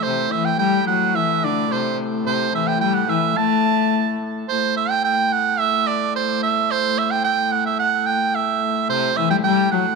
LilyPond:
<<
  \new Staff \with { instrumentName = "Shawm" } { \time 2/4 \key a \dorian \tempo 4 = 108 c''8 e''16 g''16 g''8 fis''8 | e''8 d''8 c''8 r8 | c''8 e''16 g''16 g''16 fis''16 e''8 | a''4. r8 |
c''8 e''16 g''16 g''8 fis''8 | e''8 d''8 c''8 e''8 | c''8 e''16 g''16 g''8 fis''16 e''16 | fis''8 g''8 e''4 |
c''8 e''16 g''16 g''8 fis''8 | }
  \new Staff \with { instrumentName = "Viola da gamba" } { \clef bass \time 2/4 \key a \dorian c8 e8 g8 fis8 | e8 d8 c8 r8 | c8 e8 g8 e8 | a4. r8 |
r2 | r2 | r2 | r2 |
c8 e16 g16 g8 fis8 | }
  \new Staff \with { instrumentName = "Hurdy-gurdy" } { \clef bass \time 2/4 \key a \dorian a,2~ | a,2~ | a,2~ | a,2 |
a,2~ | a,2~ | a,2~ | a,2 |
a,2 | }
>>